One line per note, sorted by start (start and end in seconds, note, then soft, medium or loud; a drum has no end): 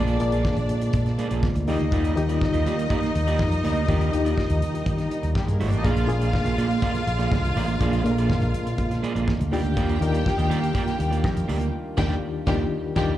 0.00 0.17 A#1 loud
0.00 1.64 D3 medium
0.00 1.64 F3 medium
0.00 1.64 G#3 medium
0.00 0.18 A#3 medium
0.00 0.20 A#3 medium
0.00 9.49 A#3 medium
0.00 1.39 D4 loud
0.00 0.18 F4 medium
0.00 0.21 F4 medium
0.00 1.64 F4 medium
0.00 0.19 G#4 loud
0.00 0.21 G#4 medium
0.00 0.19 D5 loud
0.00 0.21 D5 loud
0.00 1.39 D5 loud
0.08 closed hi-hat medium
0.20 0.41 A#1 medium
0.20 1.08 A#3 medium
0.20 1.09 F4 medium
0.20 1.09 G#4 medium
0.20 1.09 D5 loud
0.20 muted clean electric guitar stroke medium
0.20 closed hi-hat medium
0.32 0.44 A#3 medium
0.32 0.44 F4 medium
0.32 0.44 G#4 medium
0.32 0.44 D5 medium
0.32 closed hi-hat medium
0.45 muted clean electric guitar stroke soft
0.45 kick loud
0.45 snare loud
0.56 0.68 A#1 loud
0.56 muted clean electric guitar stroke soft
0.56 closed hi-hat soft
0.69 0.90 A#2 loud
0.69 closed hi-hat medium
0.81 muted clean electric guitar stroke medium
0.81 closed hi-hat medium
0.93 1.15 A#2 loud
0.93 muted clean electric guitar stroke soft
0.93 kick loud
0.93 closed hi-hat medium
1.06 muted clean electric guitar stroke soft
1.06 snare soft
1.06 closed hi-hat soft
1.18 1.30 A#3 medium
1.18 1.30 F4 medium
1.18 1.29 G#4 medium
1.18 1.29 D5 medium
1.18 closed hi-hat medium
1.30 1.41 A#1 medium
1.30 1.48 A#3 medium
1.30 1.47 F4 medium
1.30 1.47 G#4 medium
1.30 1.47 D5 medium
1.30 closed hi-hat medium
1.43 kick loud
1.43 snare loud
1.55 1.68 D2 loud
1.55 muted clean electric guitar stroke medium
1.55 closed hi-hat medium
1.67 1.78 D#2 loud
1.67 2.12 D#3 medium
1.67 5.80 D#3 medium
1.67 5.80 G3 medium
1.67 1.87 A#3 medium
1.67 2.12 D#4 medium
1.67 5.81 D#4 medium
1.67 5.27 D#4 loud
1.67 3.62 F4 medium
1.67 2.12 F4 medium
1.67 1.80 F4 medium
1.67 1.79 G4 medium
1.67 2.12 G4 loud
1.67 1.79 D5 medium
1.67 5.27 D#5 loud
1.67 open hi-hat medium
1.79 1.92 D2 loud
1.79 muted clean electric guitar stroke soft
1.79 closed hi-hat soft
1.92 2.13 D#2 loud
1.92 2.15 A#3 medium
1.92 2.15 F4 medium
1.92 2.15 G4 medium
1.92 2.15 D5 medium
1.92 kick loud
1.92 closed hi-hat medium
2.05 closed hi-hat medium
2.16 2.38 D#2 medium
2.16 3.04 D#3 medium
2.16 3.04 D#4 medium
2.16 3.05 F4 medium
2.16 3.05 G4 loud
2.16 muted clean electric guitar stroke soft
2.16 closed hi-hat medium
2.29 2.40 A#3 medium
2.29 2.40 F4 medium
2.29 2.40 G4 medium
2.29 2.41 D5 medium
2.29 closed hi-hat medium
2.41 muted clean electric guitar stroke soft
2.41 kick loud
2.41 snare loud
2.53 2.64 D#2 medium
2.53 2.64 A#3 medium
2.53 2.65 F4 medium
2.53 2.66 G4 medium
2.53 2.67 D#5 medium
2.53 closed hi-hat soft
2.66 2.87 D#3 loud
2.66 2.85 A#3 medium
2.66 2.78 F4 medium
2.66 2.77 G4 medium
2.66 2.77 D5 medium
2.66 closed hi-hat medium
2.78 muted clean electric guitar stroke soft
2.78 closed hi-hat medium
2.90 3.10 A#3 medium
2.90 3.02 F4 medium
2.90 3.01 G4 medium
2.90 3.01 D5 loud
2.90 kick loud
2.90 closed hi-hat medium
3.02 muted clean electric guitar stroke soft
3.02 snare soft
3.02 closed hi-hat soft
3.15 3.40 D#2 medium
3.15 muted clean electric guitar stroke soft
3.15 closed hi-hat medium
3.27 3.44 A#3 medium
3.27 3.44 F4 medium
3.27 3.44 G4 medium
3.27 3.44 D5 medium
3.27 closed hi-hat medium
3.39 3.60 F2 loud
3.39 kick loud
3.39 snare loud
3.52 muted clean electric guitar stroke medium
3.52 closed hi-hat medium
3.64 3.85 D2 loud
3.64 3.83 A#3 medium
3.64 3.75 F4 medium
3.64 5.82 G4 medium
3.64 3.75 G4 medium
3.64 3.75 D5 medium
3.64 open hi-hat medium
3.76 muted clean electric guitar stroke soft
3.76 closed hi-hat soft
3.88 4.09 D#2 loud
3.88 4.10 D#3 medium
3.88 4.11 A#3 medium
3.88 4.10 D4 medium
3.88 4.10 F4 medium
3.88 4.11 F4 medium
3.88 4.11 G4 medium
3.88 4.11 G4 loud
3.88 4.11 D5 medium
3.88 kick loud
3.88 closed hi-hat medium
4.01 closed hi-hat medium
4.12 4.34 D#2 medium
4.12 5.01 D#3 medium
4.12 5.01 D#4 medium
4.12 5.01 F4 medium
4.12 5.01 G4 medium
4.12 muted clean electric guitar stroke medium
4.12 closed hi-hat medium
4.25 4.36 A#3 medium
4.25 4.36 F4 medium
4.25 4.36 G4 medium
4.25 4.36 D5 medium
4.25 closed hi-hat medium
4.37 muted clean electric guitar stroke soft
4.37 kick loud
4.37 snare loud
4.49 4.60 D#2 loud
4.49 muted clean electric guitar stroke soft
4.49 closed hi-hat medium
4.62 4.83 D#3 loud
4.62 closed hi-hat medium
4.74 muted clean electric guitar stroke soft
4.74 closed hi-hat medium
4.86 5.07 D#3 loud
4.86 muted clean electric guitar stroke soft
4.86 kick loud
4.86 closed hi-hat medium
4.98 muted clean electric guitar stroke soft
4.98 snare soft
4.98 closed hi-hat soft
5.11 closed hi-hat medium
5.23 5.34 D#2 medium
5.23 muted clean electric guitar stroke soft
5.23 closed hi-hat medium
5.35 5.44 G3 medium
5.35 5.44 G4 medium
5.35 kick loud
5.35 snare loud
5.45 5.58 G2 medium
5.45 5.52 G#3 medium
5.45 5.53 G#4 medium
5.45 muted clean electric guitar stroke medium
5.45 closed hi-hat soft
5.53 5.61 A#3 medium
5.53 5.60 A#4 medium
5.60 5.71 G#1 medium
5.60 5.80 A#3 medium
5.60 5.68 C4 medium
5.60 5.72 F4 medium
5.60 5.71 G4 medium
5.60 5.69 C5 medium
5.60 5.71 D5 medium
5.60 open hi-hat medium
5.69 5.83 A1 medium
5.69 5.77 D4 medium
5.69 5.77 D5 medium
5.69 muted clean electric guitar stroke soft
5.69 closed hi-hat soft
5.77 5.85 D#4 loud
5.77 5.85 D#5 loud
5.83 6.05 A#1 loud
5.83 6.06 A#2 medium
5.83 9.48 D3 medium
5.83 9.48 F3 medium
5.83 9.48 G#3 medium
5.83 6.06 A#3 medium
5.83 6.07 A#3 medium
5.83 6.06 D4 medium
5.83 13.18 F4 medium
5.83 6.07 F4 loud
5.83 9.24 F4 loud
5.83 6.07 G#4 medium
5.83 6.07 G#4 loud
5.83 6.07 D5 loud
5.83 9.24 F5 loud
5.83 kick loud
5.83 closed hi-hat medium
5.97 closed hi-hat medium
6.07 6.30 A#1 medium
6.07 6.96 A#2 medium
6.07 6.96 A#3 medium
6.07 6.97 D4 medium
6.07 6.97 G#4 loud
6.07 muted clean electric guitar stroke medium
6.07 closed hi-hat medium
6.21 6.32 A#3 medium
6.21 6.33 F4 medium
6.21 6.33 G#4 medium
6.21 6.33 D5 medium
6.21 closed hi-hat medium
6.33 muted clean electric guitar stroke soft
6.33 kick loud
6.33 snare loud
6.45 6.56 A#1 loud
6.45 6.56 A#3 medium
6.45 6.57 F4 medium
6.45 6.57 G#4 medium
6.45 6.58 F5 medium
6.45 closed hi-hat medium
6.57 6.79 A#2 medium
6.57 6.77 A#3 medium
6.57 6.69 F4 medium
6.57 6.69 G#4 medium
6.57 6.69 D5 medium
6.57 closed hi-hat medium
6.70 muted clean electric guitar stroke medium
6.70 closed hi-hat medium
6.82 7.02 A#3 medium
6.82 6.94 F4 medium
6.82 6.93 G#4 loud
6.82 6.93 D5 loud
6.82 kick loud
6.82 closed hi-hat medium
6.94 muted clean electric guitar stroke medium
6.94 snare soft
6.94 closed hi-hat soft
7.07 7.28 A#1 medium
7.07 muted clean electric guitar stroke soft
7.07 closed hi-hat medium
7.18 7.36 A#3 medium
7.18 7.36 F4 medium
7.18 7.36 G#4 medium
7.18 7.35 D5 medium
7.18 closed hi-hat medium
7.32 7.52 C2 loud
7.32 kick loud
7.32 snare loud
7.43 muted clean electric guitar stroke soft
7.43 closed hi-hat medium
7.56 7.77 A1 loud
7.56 7.75 A#3 medium
7.56 7.68 F4 medium
7.56 7.68 G#4 medium
7.56 7.68 D5 loud
7.56 open hi-hat medium
7.68 muted clean electric guitar stroke medium
7.68 closed hi-hat soft
7.79 8.01 A#1 loud
7.79 8.02 A#2 medium
7.79 8.02 A#3 medium
7.79 8.03 A#3 medium
7.79 8.02 D4 medium
7.79 8.04 F4 loud
7.79 8.03 G#4 medium
7.79 8.04 G#4 loud
7.79 8.04 D5 medium
7.79 kick loud
7.79 closed hi-hat medium
7.93 closed hi-hat medium
8.04 8.93 A#2 medium
8.04 8.93 A#3 medium
8.04 8.93 D4 medium
8.04 8.11 A4 medium
8.04 muted clean electric guitar stroke medium
8.04 closed hi-hat medium
8.11 8.96 A#4 loud
8.18 8.29 A#3 medium
8.18 8.30 F4 medium
8.18 8.30 G#4 medium
8.18 8.30 D5 medium
8.18 closed hi-hat medium
8.30 kick loud
8.30 snare loud
8.42 8.52 A#1 loud
8.42 muted clean electric guitar stroke soft
8.42 closed hi-hat soft
8.54 8.75 A#2 loud
8.54 closed hi-hat medium
8.66 muted clean electric guitar stroke soft
8.66 closed hi-hat medium
8.78 8.99 A#2 medium
8.78 muted clean electric guitar stroke soft
8.78 kick loud
8.78 closed hi-hat medium
8.91 muted clean electric guitar stroke soft
8.91 snare soft
8.91 closed hi-hat soft
9.03 9.15 A#3 medium
9.03 9.15 F4 medium
9.03 9.14 G#4 loud
9.03 9.14 D5 loud
9.03 closed hi-hat medium
9.15 9.26 A#1 medium
9.15 9.32 A#3 medium
9.15 9.32 F4 medium
9.15 9.32 G#4 medium
9.15 9.32 D5 medium
9.15 closed hi-hat soft
9.28 kick loud
9.28 snare loud
9.39 9.52 D2 loud
9.39 muted clean electric guitar stroke soft
9.39 closed hi-hat medium
9.51 9.63 D#2 loud
9.51 9.96 D#3 medium
9.51 13.18 D#3 medium
9.51 13.18 G3 medium
9.51 9.72 A#3 medium
9.51 13.18 A#3 medium
9.51 9.96 D4 medium
9.51 13.18 D4 medium
9.51 9.64 F4 medium
9.51 9.96 F4 medium
9.51 11.69 G4 medium
9.51 9.63 G4 medium
9.51 9.97 G4 loud
9.51 9.63 D5 medium
9.51 11.69 G5 loud
9.51 open hi-hat medium
9.64 9.77 D2 loud
9.64 muted clean electric guitar stroke soft
9.64 closed hi-hat soft
9.76 9.98 D#2 loud
9.76 9.99 A#3 medium
9.76 9.99 F4 medium
9.76 9.99 G4 loud
9.76 9.99 D5 medium
9.76 kick loud
9.76 closed hi-hat medium
9.89 closed hi-hat medium
10.01 10.22 D#2 loud
10.01 10.89 D#3 medium
10.01 10.90 D4 medium
10.01 10.90 F4 medium
10.01 10.90 A#4 loud
10.01 muted clean electric guitar stroke medium
10.01 closed hi-hat medium
10.13 10.24 A#3 medium
10.13 10.24 F4 medium
10.13 10.25 G4 medium
10.13 10.25 D5 medium
10.13 closed hi-hat medium
10.26 kick loud
10.26 snare loud
10.38 10.48 D#2 loud
10.38 10.48 A#3 medium
10.38 10.48 F4 medium
10.38 10.49 G4 medium
10.38 10.50 D#5 medium
10.38 closed hi-hat medium
10.49 10.71 D#3 medium
10.49 10.69 A#3 medium
10.49 10.62 F4 medium
10.49 10.61 G4 loud
10.49 10.61 D5 loud
10.49 closed hi-hat medium
10.62 muted clean electric guitar stroke soft
10.62 closed hi-hat medium
10.74 10.94 A#3 medium
10.74 10.86 F4 medium
10.74 10.85 G4 medium
10.74 10.85 D5 loud
10.74 kick loud
10.74 closed hi-hat medium
10.86 muted clean electric guitar stroke soft
10.86 snare soft
10.86 closed hi-hat soft
10.99 11.24 D#2 medium
10.99 muted clean electric guitar stroke soft
10.99 closed hi-hat medium
11.11 11.28 A#3 medium
11.11 11.28 F4 medium
11.11 11.28 G4 medium
11.11 11.28 D5 medium
11.11 closed hi-hat medium
11.24 11.45 F2 loud
11.24 kick loud
11.24 snare loud
11.36 muted clean electric guitar stroke soft
11.36 closed hi-hat medium
11.48 11.70 D2 loud
11.48 11.68 A#3 medium
11.48 11.60 F4 medium
11.48 11.60 G4 medium
11.48 11.59 D5 medium
11.48 open hi-hat medium
11.60 muted clean electric guitar stroke medium
11.60 closed hi-hat soft
11.97 12.15 D#2 loud
11.97 12.14 D#3 loud
11.97 12.15 A#3 loud
11.97 12.14 D4 loud
11.97 12.14 F4 loud
11.97 12.15 F4 loud
11.97 12.14 G4 loud
11.97 12.15 G4 medium
11.97 12.15 G4 loud
11.97 12.14 D5 loud
11.97 12.14 G5 loud
11.97 kick loud
11.97 snare loud
11.97 crash medium
12.47 12.64 D#2 loud
12.47 12.64 D#3 loud
12.47 12.64 A#3 medium
12.47 12.64 D4 loud
12.47 12.64 F4 loud
12.47 12.64 F4 medium
12.47 12.64 G4 loud
12.47 12.64 D5 medium
12.47 12.64 G5 loud
12.47 kick loud
12.47 snare loud
12.96 13.13 D#2 loud
12.96 13.13 D#3 loud
12.96 13.13 A#3 medium
12.96 13.13 D4 medium
12.96 13.13 F4 loud
12.96 13.13 G4 loud
12.96 13.14 G4 loud
12.96 13.13 D5 loud
12.96 13.13 G5 loud
12.96 kick loud
12.96 snare loud